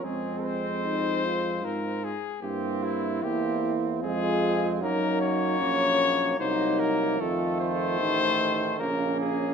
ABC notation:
X:1
M:3/4
L:1/8
Q:1/4=75
K:Fphr
V:1 name="Cornet"
A c3 B A | =G =E G z A2 | B d3 c B | =A c3 B _A |]
V:2 name="French horn"
C2 E F2 z | =E4 F2 | E2 D2 E2 | F2 E2 D2 |]
V:3 name="Trumpet"
C4- C z | C2 C2 C2 | B,4 B,2 | =A,4 B,2 |]
V:4 name="Euphonium" clef=bass
A,4- A, z | B,2 B,2 A,2 | G,4 G,2 | E,4 D,2 |]
V:5 name="Tuba" clef=bass
F,,4 A,, z | =G,,2 =E,,2 F,,2 | G,,2 B,,,2 C,,2 | F,,2 =A,,,2 B,,,2 |]